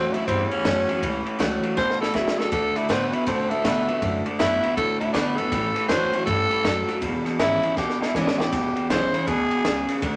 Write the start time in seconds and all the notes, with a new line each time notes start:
Already playing: A2 E3 F#3 A3 C4 C#4 F#4
0.13 A2 F#3 C#4 E4 F#4, muted upright bass stroke, ride
0.27 E2 G2 A2 E3 C4, kick, snare, ride
0.50 A2 E3 C#4, ride
0.65 F#2 A2 E3 F#3 A3 C#4 F#4, kick, snare, ride
0.89 A2 F#3 C#4 F#4, ride
1.02 C#2 A2 E3, kick, ride
1.25 A2 E3, ride
1.39 C#2 A2 E3 F#3 A3 C#4 F#4, snare, ride
1.63 A2 F#3, ride
1.77 G1 A2 B2 E3 C5, kick, snare
1.90 snare
2.00 A1 A2 E3 A4, snare
2.14 C#2 A2 C#3 F#3 E4, kick, snare
2.28 snare
2.38 E2 A2 F#3 A4, snare
2.52 D2 D3 A3 A4, kick, snare, ride
2.76 D3 A3 E4, muted upright bass stroke, snare, ride
2.89 A2 D3 A3 B3 C4 F#4, snare, ride
3.12 D3 B3 E4 F#4, ride
3.27 A2 B2 D3 A3 C4, kick, snare, ride
3.50 D3 A3, muted upright bass stroke, ride
3.64 B2 D3 A3 B3 F#4, kick, snare, ride
3.87 D3 B3 F#4, muted upright bass stroke, ride
4.01 F#2 D3 A3, kick, ride
4.25 D3 A3, ride
4.39 F#2 D3 A3 B3 E4 F#4, snare, ride
4.62 D3 B3 F#4, muted upright bass stroke, ride
4.77 B1 A2 D3 A3 A4, kick, ride
5.00 D2 D3 A3 E4, ride
5.13 F#2 D3 A3 B3 D4 F#4, kick, snare, ride
5.37 F#2 D3 B3 F#4 A4, ride
5.52 A1 A2 E3, kick, snare, ride
5.75 A2 E3, snare, ride
5.88 E2 A2 E3 F#3 A3 C#4 F#4 C5, snare, ride
6.12 A2 F#3 C#4 F#4, muted upright bass stroke, ride
6.26 G2 A2 E3 A4, kick, snare, ride
6.50 A2 E3, muted upright bass stroke, ride
6.64 F#2 A2 F#3, kick, snare, ride
6.87 A2 F#3, snare, ride
7.01 E1 E2 B2, kick, snare, ride
7.25 E2 B2, muted upright bass stroke, snare, ride
7.39 G#1 E2 C#3 E3 G#3 C#4 E4, snare, ride
7.63 E2 C#3 C#4 E4, ride
7.77 D2 E2 B2 G4, kick, snare
7.90 snare
8.00 E1 E2 B2 E4, snare
8.15 G#1 E2 C#3 E3 G#3 C#4 D4 E4, kick, snare
8.27 snare
8.38 G#1 E2 C#3 C#4 E4 G4, snare
8.52 E1 E2 B2, kick, ride, splash
8.76 E2 B2, muted upright bass stroke, ride
8.89 B1 E2 C#3 E3 G#3 C#4 E4 C5, snare, ride
9.13 E2 C#3 C#4 E4, muted upright bass stroke, ride
9.27 D2 E2 B2 G#4, kick, snare, ride
9.51 E2 B2, ride
9.65 C#2 E2 C#3, kick, snare, ride
9.89 E2 C#3, muted upright bass stroke, snare, ride
10.02 D2 D3 A3, kick, ride